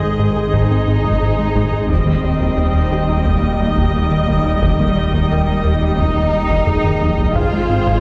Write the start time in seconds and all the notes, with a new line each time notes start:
Already playing: G#1 D#3 G#3 D#4 G#4 C5 D#5
0.03 G#2
0.19 G#2 G#3
0.36 G#2 G#4
0.53 G#2 G#3 D#4, taiko
0.71 G#2 C4
0.87 G#2 C4
1.04 G#2 G#3, taiko
1.21 G#2
1.38 G#3
1.56 G#2 G#3, taiko
1.73 G#2 G#4
1.89 D#1 D#2 D#3 G3 C4 D#4 D#5 G5, taiko
2.06 D#3 A#3
2.23 D#2 G3
2.40 D#2 D#3, taiko
2.57 D#2
2.74 D#2
2.92 D#2 D#3 G4 G5
3.09 D#2 D#4
3.25 D#2 D#3 A#3, taiko
3.43 D#2 G3
3.60 D#2 G3
3.77 D#2 D#3, taiko
3.95 D#2
4.11 D#3
4.28 D#2 D#3, taiko
4.45 D#2 D#4
4.62 D#2 D#3 G3, taiko
4.79 D#3 A#3
4.97 D#2 G3
5.13 D#2 D#3, taiko
5.31 D#2 A#4 G5
5.48 D#2
5.65 D#2 D#3
5.82 D#2 D#4
5.98 D#2 D#3 D#4, taiko
6.16 D#2 G3
6.33 D#2 G3
6.50 D#2 D#3, taiko
6.67 D#2 G#4, taiko low-mid
6.84 D#3, taiko low-mid
7.01 D#2 D#3, taiko high
7.18 D#2 D#4, taiko low
7.34 G#1 G#2 D#3 G#3 C4 F4 G#4 C5 F5, taiko
7.53 G#3 D#4
7.69 G#2 C4
7.86 G#2 G#3, taiko